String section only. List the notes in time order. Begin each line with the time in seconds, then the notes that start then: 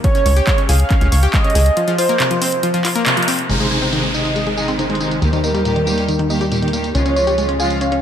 3.50 C3 D#3 G#3 D#4
3.60 C3 D#3 G#3 D#4
3.71 C3 D#3 G#3 D#4
3.82 C3 D#3 G#3 D#4
3.93 C3 D#3 G#3 D#4
4.14 C3 D#3 G#3 D#4
4.57 C3 D#3 G#3 D#4
4.79 C3 D#3 G#3 D#4
4.90 C3 D#3 G#3 D#4
5.01 C3 D#3 G#3 D#4
5.22 D#3 G3 A#3 G4
5.33 D#3 G3 A#3 G4
5.44 D#3 G3 A#3 G4
5.54 D#3 G3 A#3 G4
5.65 D#3 G3 A#3 G4
5.87 D#3 G3 A#3 G4
6.30 D#3 G3 A#3 G4
6.52 D#3 G3 A#3 G4
6.62 D#3 G3 A#3 G4
6.73 D#3 G3 A#3 G4
6.95 C#3 F3 G#3 F4
7.06 C#3 F3 G#3 F4
7.16 C#3 F3 G#3 F4
7.27 C#3 F3 G#3 F4
7.38 C#3 F3 G#3 F4
7.60 C#3 F3 G#3 F4